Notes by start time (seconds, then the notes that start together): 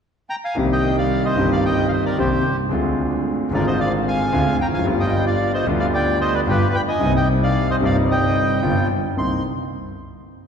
0.30 G5 A#5
0.45 F5 G#5
0.55 C2 C3 D#3 A#3 C4 G4
0.72 D#5 G5
0.98 D5 F5
1.25 C5 D#5
1.35 G1 G2 D#3 A#3 C4
1.40 G4
1.52 D5 F5
1.65 D#5 G5
1.89 D#5 F5
1.93 C5
2.05 A#4 D5
2.18 C2 C3 D#3 A#3 C4 G4 C5
2.69 D2 D3 G#3 C4 F4
3.50 G#1 G#2 D3 G#3 C4 D5
3.54 F4 A#4
3.67 C5 D#5
3.80 D5 F5
4.08 F5 G#5
4.32 D2 D3 G#3 C4 F4
4.61 F1 G5 A#5
4.66 E2
4.72 F2 F5 G#5
4.79 F#2 D3
4.84 G1 G2 G3 B3 F4
5.00 D#5 G5
5.27 D5 F5
5.54 C5 D#5
5.66 D2 D3 G3 B3 F4
5.79 D5 F5
5.94 D5 G5
6.21 C5 D#5
6.34 B4 D5
6.47 G1 G2 D3 G3 B3 F4 G4 B4
6.75 G5 B5
6.88 D#5 G#5
7.00 C2 C3 G3 A#3 D#4
7.16 D#5 G5
7.43 D5 F5
7.71 C5 D#5
7.79 G1 G2 C3 G3 A#3 D#4
7.85 D5 F5
8.11 D#5 G5
8.62 G1 G2 D3 G3 B3 F4
9.17 C2 A#3 C4 D#4 C6